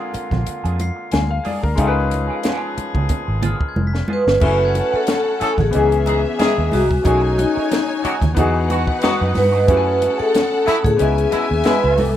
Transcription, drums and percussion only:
0.14 closed hi-hat, muted conga
0.31 kick, snare, low conga
0.47 closed hi-hat
0.65 closed hi-hat
0.80 closed hi-hat, muted conga
1.12 snare, closed hi-hat, high conga
1.45 open hi-hat, high conga
1.63 kick
1.78 kick, closed hi-hat, muted conga
2.11 closed hi-hat, muted conga
2.43 snare, closed hi-hat, high conga
2.78 closed hi-hat, muted conga
2.95 kick, low conga
3.09 kick, closed hi-hat, low conga
3.42 closed hi-hat, muted conga, low conga
3.61 kick
3.76 high conga
3.95 snare
4.08 high conga
4.28 snare
4.40 kick, crash, muted conga
4.75 closed hi-hat, muted conga
5.07 snare, closed hi-hat, high conga
5.41 closed hi-hat, muted conga
5.58 kick, snare, low conga
5.73 closed hi-hat
5.92 closed hi-hat
6.06 closed hi-hat, muted conga
6.39 snare, closed hi-hat, high conga
6.72 snare, open hi-hat, high conga
6.91 kick
7.05 kick, closed hi-hat, muted conga
7.39 closed hi-hat, muted conga
7.72 snare, closed hi-hat, high conga
8.05 closed hi-hat, muted conga
8.22 kick, snare, closed hi-hat, low conga
8.37 kick, closed hi-hat, low conga
8.70 closed hi-hat, muted conga
8.87 kick
9.02 snare, closed hi-hat, high conga
9.35 snare, open hi-hat, high conga
9.68 kick, closed hi-hat, muted conga
10.02 closed hi-hat, muted conga
10.34 snare, closed hi-hat, high conga
10.67 closed hi-hat, muted conga
10.84 kick, closed hi-hat, low conga
10.99 closed hi-hat
11.18 closed hi-hat
11.32 closed hi-hat, muted conga
11.64 snare, closed hi-hat, high conga
11.98 snare, open hi-hat, high conga

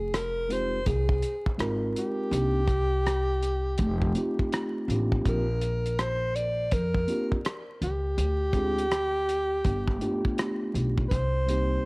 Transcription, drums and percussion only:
0.14 cross-stick, closed hi-hat
0.51 closed hi-hat
0.86 kick, closed hi-hat
1.09 kick
1.22 closed hi-hat
1.46 kick
1.59 cross-stick, closed hi-hat
1.96 closed hi-hat
2.33 closed hi-hat
2.68 kick, closed hi-hat
3.07 cross-stick, closed hi-hat
3.43 closed hi-hat
3.78 kick, closed hi-hat
4.02 kick
4.15 closed hi-hat
4.39 kick
4.52 cross-stick, closed hi-hat
4.90 closed hi-hat
5.12 kick
5.25 kick, closed hi-hat
5.61 closed hi-hat
5.86 closed hi-hat
5.99 cross-stick, closed hi-hat
6.36 closed hi-hat
6.71 kick, closed hi-hat
6.94 kick
7.08 closed hi-hat
7.32 kick
7.45 cross-stick, closed hi-hat
7.82 closed hi-hat
8.18 closed hi-hat
8.53 kick, closed hi-hat
8.78 closed hi-hat
8.91 cross-stick, closed hi-hat
9.29 closed hi-hat
9.65 kick, closed hi-hat
9.88 kick, cross-stick
10.01 closed hi-hat
10.25 kick
10.38 cross-stick, closed hi-hat
10.75 closed hi-hat
10.98 kick
11.11 kick, closed hi-hat
11.48 closed hi-hat

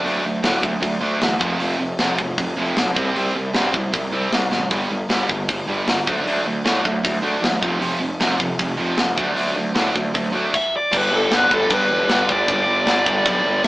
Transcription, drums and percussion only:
0.06 open hi-hat
0.44 snare, open hi-hat
0.63 kick
0.83 kick, open hi-hat
1.22 snare, open hi-hat
1.41 kick
1.60 open hi-hat
1.99 snare, open hi-hat
2.19 kick
2.38 kick, open hi-hat
2.77 snare, open hi-hat
2.96 kick
3.16 open hi-hat
3.54 snare, open hi-hat
3.74 kick
3.93 kick, open hi-hat
4.32 snare, open hi-hat
4.52 snare
4.70 kick, open hi-hat
5.10 snare, open hi-hat
5.29 kick
5.49 kick, open hi-hat
5.88 snare, open hi-hat
6.07 kick
6.27 open hi-hat
6.66 snare, open hi-hat
6.85 kick
7.05 kick, open hi-hat
7.44 snare, open hi-hat
7.63 kick
7.82 open hi-hat
8.21 snare, open hi-hat
8.40 kick
8.59 kick, open hi-hat
8.98 snare, open hi-hat
9.18 kick
9.37 open hi-hat
9.76 snare, open hi-hat
9.96 kick
10.14 kick, open hi-hat
10.54 kick, crash
10.93 kick, crash
11.32 snare, crash
11.51 kick
11.70 kick, crash
12.09 snare, crash
12.29 kick
12.48 kick, crash
12.87 snare, crash
13.06 kick
13.26 kick, crash
13.64 snare, crash

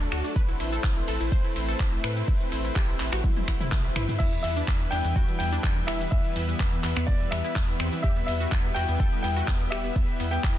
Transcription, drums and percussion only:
0.01 closed hi-hat, cabasa
0.12 finger snap, open hi-hat, ride
0.25 open hi-hat, cabasa
0.36 kick, closed hi-hat, cabasa
0.49 closed hi-hat, cabasa
0.60 open hi-hat, ride
0.73 closed hi-hat, cabasa
0.84 kick, clap, closed hi-hat, cabasa
0.97 closed hi-hat, cabasa
1.08 open hi-hat, ride
1.21 closed hi-hat, cabasa
1.32 kick, closed hi-hat, cabasa
1.45 closed hi-hat, cabasa
1.56 open hi-hat, ride
1.69 closed hi-hat, cabasa
1.80 kick, clap, closed hi-hat, cabasa
1.93 closed hi-hat, cabasa
2.04 finger snap, open hi-hat, ride
2.17 closed hi-hat, cabasa
2.28 kick, closed hi-hat, cabasa
2.41 closed hi-hat, cabasa
2.52 open hi-hat, ride
2.65 closed hi-hat, cabasa
2.76 kick, clap, closed hi-hat, cabasa
2.89 closed hi-hat, cabasa
3.00 clap, open hi-hat, ride
3.13 finger snap, closed hi-hat, cabasa
3.24 kick, closed hi-hat, high tom, cabasa
3.37 closed hi-hat, high tom, cabasa
3.48 finger snap, kick, open hi-hat, ride
3.61 closed hi-hat, mid tom, cabasa
3.72 kick, clap, closed hi-hat, mid tom, cabasa
3.85 closed hi-hat, cabasa
3.96 finger snap, mid tom, open hi-hat, ride
4.09 mid tom, open hi-hat, cabasa
4.20 kick, closed hi-hat, crash, cabasa
4.33 closed hi-hat, cabasa
4.44 open hi-hat, ride
4.57 closed hi-hat, cabasa
4.68 kick, clap, closed hi-hat, cabasa
4.81 closed hi-hat, cabasa
4.92 open hi-hat, ride
5.05 closed hi-hat, cabasa
5.16 kick, closed hi-hat, cabasa
5.29 closed hi-hat, cabasa
5.40 open hi-hat, ride
5.53 closed hi-hat, cabasa
5.64 kick, clap, closed hi-hat, cabasa
5.76 closed hi-hat, cabasa
5.88 finger snap, open hi-hat, ride
6.01 closed hi-hat, cabasa
6.12 kick, closed hi-hat, cabasa
6.25 closed hi-hat, cabasa
6.36 open hi-hat, ride
6.49 closed hi-hat, cabasa
6.60 kick, clap, closed hi-hat, cabasa
6.73 closed hi-hat, cabasa
6.84 clap, open hi-hat, ride
6.97 finger snap, cabasa
7.08 kick, closed hi-hat, cabasa
7.21 closed hi-hat, cabasa
7.32 finger snap, open hi-hat, ride
7.45 closed hi-hat, cabasa
7.56 kick, clap, closed hi-hat, cabasa
7.69 closed hi-hat, cabasa
7.80 finger snap, open hi-hat, ride
7.92 open hi-hat, cabasa
8.04 kick, closed hi-hat, cabasa
8.17 closed hi-hat, cabasa
8.28 open hi-hat, ride
8.41 closed hi-hat, cabasa
8.52 kick, clap, closed hi-hat, cabasa
8.65 closed hi-hat, cabasa
8.76 open hi-hat, ride
8.89 closed hi-hat, cabasa
9.00 kick, closed hi-hat, cabasa
9.13 closed hi-hat, cabasa
9.24 open hi-hat, ride
9.37 closed hi-hat, cabasa
9.48 kick, clap, closed hi-hat, cabasa
9.61 closed hi-hat, cabasa
9.72 finger snap, open hi-hat, ride
9.84 closed hi-hat, cabasa
9.96 kick, closed hi-hat, cabasa
10.09 closed hi-hat, cabasa
10.20 open hi-hat, ride
10.33 closed hi-hat, cabasa
10.44 kick, clap, closed hi-hat, cabasa

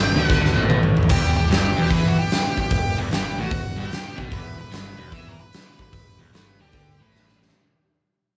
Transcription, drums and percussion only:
0.30 kick, snare
0.45 snare
0.56 high tom
0.63 high tom
0.70 mid tom
0.83 mid tom
0.97 floor tom
1.03 floor tom
1.09 kick, open hi-hat, crash
1.51 snare, open hi-hat
1.86 snare
1.90 kick, open hi-hat
2.30 snare, open hi-hat
2.57 kick
2.70 kick, open hi-hat
3.11 snare, open hi-hat
3.51 kick, open hi-hat
3.91 snare, open hi-hat
4.18 kick
4.32 kick, open hi-hat
4.72 snare, open hi-hat
5.12 kick, open hi-hat
5.53 snare, open hi-hat
5.79 kick
5.93 kick, open hi-hat
6.33 snare, open hi-hat
6.73 kick, open hi-hat
7.15 snare
7.29 snare
7.42 snare
7.49 snare

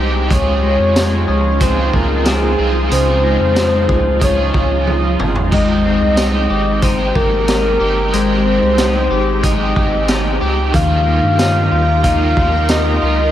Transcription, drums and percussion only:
0.31 kick, closed hi-hat
0.96 snare, closed hi-hat, tambourine
1.60 kick, closed hi-hat
1.94 kick
2.25 snare, closed hi-hat, tambourine
2.91 closed hi-hat
3.56 snare, closed hi-hat, tambourine
3.89 kick
4.21 kick, closed hi-hat
4.54 kick
4.87 high tom
5.20 mid tom
5.36 floor tom
5.52 kick, splash
6.17 snare, closed hi-hat, tambourine
6.82 kick, closed hi-hat
7.15 kick
7.48 snare, closed hi-hat, tambourine
8.13 closed hi-hat
8.78 snare, closed hi-hat, tambourine
9.43 kick, closed hi-hat
9.76 kick
10.08 snare, closed hi-hat, tambourine
10.74 kick, closed hi-hat
11.39 snare, closed hi-hat, tambourine
12.04 kick, closed hi-hat
12.37 kick
12.69 snare, closed hi-hat, tambourine

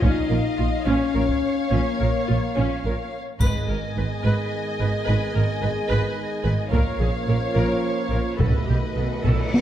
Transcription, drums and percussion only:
0.02 taiko
1.29 taiko
3.40 taiko, triangle
6.72 taiko
8.40 taiko
9.25 taiko low-mid
9.54 taiko high

